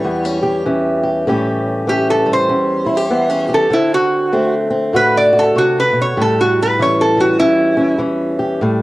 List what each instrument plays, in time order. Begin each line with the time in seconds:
Already playing: steel-string acoustic guitar E3 G3, resonator guitar played with a steel bar C#5
0.04 steel-string acoustic guitar E2 B3
0.25 steel-string acoustic guitar C#4
0.43 steel-string acoustic guitar G4
0.66 steel-string acoustic guitar E3 C#4
1.03 steel-string acoustic guitar G4
1.27 steel-string acoustic guitar A2 E3 G3 C#4 G4
1.87 steel-string acoustic guitar E3 C#4, resonator guitar played with a steel bar G4
2.10 resonator guitar played with a steel bar A4
2.26 steel-string acoustic guitar G3
2.33 resonator guitar played with a steel bar C5
2.49 steel-string acoustic guitar E2 C#4
2.86 steel-string acoustic guitar E4
2.97 steel-string acoustic guitar G4
3.10 steel-string acoustic guitar E3 B3
3.30 steel-string acoustic guitar C#4
3.49 steel-string acoustic guitar G4
3.54 resonator guitar played with a steel bar A4
3.70 steel-string acoustic guitar D3 C4, resonator guitar played with a steel bar E4
3.94 resonator guitar played with a steel bar F#4
4.33 steel-string acoustic guitar A3 C4
4.70 steel-string acoustic guitar C4
4.93 steel-string acoustic guitar A2 F#4, resonator guitar played with a steel bar B4
5.17 resonator guitar played with a steel bar D5
5.33 steel-string acoustic guitar F#4
5.39 resonator guitar played with a steel bar A4
5.56 steel-string acoustic guitar C3, resonator guitar played with a steel bar F#4
5.80 resonator guitar played with a steel bar B4
5.93 steel-string acoustic guitar B2
6.02 resonator guitar played with a steel bar C#5
6.17 steel-string acoustic guitar A2 G3
6.22 resonator guitar played with a steel bar A4
6.41 resonator guitar played with a steel bar F#4
6.63 resonator guitar played with a steel bar B4
6.79 steel-string acoustic guitar E3 C#4, resonator guitar played with a steel bar C#5
7.01 resonator guitar played with a steel bar A4
7.17 steel-string acoustic guitar G3, resonator guitar played with a steel bar F#4
7.39 steel-string acoustic guitar E2 C#4, resonator guitar played with a steel bar E4
7.77 steel-string acoustic guitar C#4
7.98 steel-string acoustic guitar E3 C#4
8.39 steel-string acoustic guitar G4
8.61 steel-string acoustic guitar A2 G3